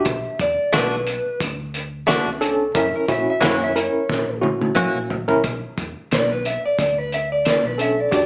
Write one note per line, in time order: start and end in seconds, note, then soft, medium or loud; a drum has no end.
0.00 0.39 E5 loud
0.05 0.22 B1 loud
0.05 kick loud
0.05 closed hi-hat medium
0.39 0.56 E2 loud
0.39 0.73 D5 medium
0.39 kick medium
0.39 closed hi-hat medium
0.73 1.18 B1 medium
0.73 0.95 A3 medium
0.73 0.95 D4 medium
0.73 0.95 F#4 medium
0.73 1.40 B4 medium
0.73 snare loud
0.73 closed hi-hat medium
1.07 closed hi-hat medium
1.26 muted fingered electric bass stroke soft
1.40 2.15 D2 loud
1.40 kick medium
1.40 closed hi-hat medium
1.74 closed hi-hat medium
2.07 2.29 A3 medium
2.07 2.29 D4 loud
2.07 2.30 F#4 loud
2.07 snare loud
2.07 closed hi-hat medium
2.26 2.68 C#2 medium
2.41 2.71 C#4 medium
2.41 2.71 D4 medium
2.41 2.71 A4 loud
2.41 closed hi-hat medium
2.74 2.91 F#1 medium
2.74 3.05 C#4 medium
2.74 3.05 E4 medium
2.74 3.05 A#4 medium
2.74 2.94 E5 loud
2.74 kick loud
2.74 closed hi-hat medium
2.96 3.09 A#4 medium
3.08 3.25 A#1 loud
3.08 3.39 C#4 medium
3.08 3.38 E4 medium
3.08 3.38 F#4 medium
3.08 3.28 E5 loud
3.08 kick medium
3.08 closed hi-hat medium
3.30 3.43 E5 loud
3.40 3.87 F#1 medium
3.40 3.63 E3 medium
3.40 3.63 A#3 medium
3.40 3.71 C#4 medium
3.40 3.64 C#4 medium
3.40 3.71 E4 medium
3.40 3.64 F#4 medium
3.40 3.71 C#5 medium
3.40 snare loud
3.40 closed hi-hat medium
3.46 3.62 A#4 medium
3.64 3.78 E5 loud
3.76 4.35 C#4 medium
3.76 4.35 E4 medium
3.76 4.35 A#4 medium
3.76 4.42 C#5 loud
3.76 closed hi-hat medium
3.94 muted fingered electric bass stroke soft
4.09 4.83 A#1 loud
4.09 kick medium
4.09 snare medium
4.41 5.16 C#4 medium
4.41 5.16 E4 medium
4.41 5.16 F#4 medium
4.41 high tom medium
4.62 high tom medium
4.75 4.97 E3 medium
4.75 4.98 A#3 medium
4.75 4.98 C#4 loud
4.75 4.98 F#4 loud
4.75 mid tom medium
4.95 5.37 A#1 medium
5.10 floor tom loud
5.28 5.43 C#4 medium
5.28 5.43 E4 medium
5.28 5.43 A#4 loud
5.28 floor tom medium
5.44 5.60 B1 medium
5.44 kick loud
5.44 closed hi-hat medium
5.78 5.93 E2 medium
5.78 kick medium
5.78 closed hi-hat medium
6.11 6.56 B1 medium
6.11 6.30 D5 medium
6.11 snare loud
6.11 closed hi-hat medium
6.31 6.45 B4 medium
6.45 6.63 E5 medium
6.45 closed hi-hat medium
6.63 6.79 D5 medium
6.63 muted fingered electric bass stroke soft
6.79 7.52 D2 medium
6.79 6.98 D5 medium
6.79 kick medium
6.79 closed hi-hat medium
6.98 7.12 B4 medium
7.12 7.31 E5 medium
7.12 closed hi-hat medium
7.32 7.46 D5 medium
7.45 7.66 D5 medium
7.45 snare loud
7.45 closed hi-hat medium
7.63 8.05 B1 medium
7.63 7.79 B4 medium
7.78 8.08 C#4 medium
7.78 8.08 D4 medium
7.78 8.08 A4 medium
7.78 8.00 E5 medium
7.78 closed hi-hat medium
8.00 8.13 D5 medium
8.11 8.26 E2 medium
8.11 8.26 D4 medium
8.11 8.26 F#4 medium
8.11 8.26 G4 medium
8.11 8.26 D5 medium
8.11 kick loud
8.11 closed hi-hat medium